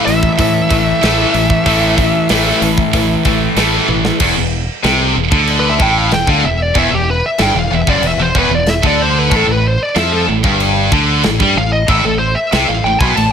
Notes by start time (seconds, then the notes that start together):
Already playing: A2 E3 A3
0.06 A1 A2 E3 E5, open hi-hat
0.23 kick
0.39 A2 E3, kick, open hi-hat
0.70 A1 A2 E3 A3, kick, open hi-hat
1.03 A1 A2 E3 A3, snare, open hi-hat
1.34 A1 A2 E3, open hi-hat
1.50 kick
1.66 A1 A2 E3 A3, kick, open hi-hat
1.98 A2 E3, kick, open hi-hat
2.29 A1 A2 E3 A3, snare, open hi-hat
2.62 A1 A2 E3, open hi-hat
2.78 kick
2.93 A1 A2 E3, kick, open hi-hat
3.25 A1 A2 E3 A3, kick, open hi-hat
3.56 A1 A2 E3 A3, snare, open hi-hat
3.88 A1 A2 E3, high tom
4.05 snare
4.20 E1 E2, kick, crash, china
4.37 E1 E2
4.83 C2 C3, snare, china
5.15 E1 E2
5.31 D2 D3, kick
5.47 china
5.60 B4
5.69 E5
5.80 A1 A2 G5, kick
5.98 F5
6.12 E1 E2 G5, snare, china
6.27 D2 D3 F5, kick
6.43 E1 E2 E5
6.62 D5
6.75 E1 E2 E5, kick, china
6.91 E1 E2 G4
7.10 B4
7.26 E5
7.38 G1 G2 G5, snare, china
7.54 E1 E2 F5
7.71 E1 E2 E5
7.87 F#1 F#2 D5, kick
8.01 E1 E2, china
8.07 E5
8.17 E1 E2
8.22 C5
8.35 E1 E2, kick
8.39 B4
8.49 E1 E2
8.55 D5
8.66 E5, snare, china
8.83 D2 D3 D5, kick
9.02 C5
9.19 B4
9.31 A1 A2, kick, china
9.36 A4
9.47 A1 A2
9.52 B4
9.67 C5
9.83 D5
9.96 F2 F3 E5, snare, china
10.12 A4
10.28 A1 A2
10.44 G1 G2, kick
10.60 china
10.92 D2 D3, kick
11.23 A1 A2, snare, china
11.40 G2 G3, kick
11.56 A1 A2 F5
11.73 D#5
11.88 A1 A2 E5, kick, china
12.04 A1 A2 A4
12.19 C5
12.35 E5
12.52 C2 C3 E5, snare, china
12.69 A1 A2 F5
12.84 A1 A2 G5
12.99 B1 B2 G#5, kick
13.16 A1 A2 A5, china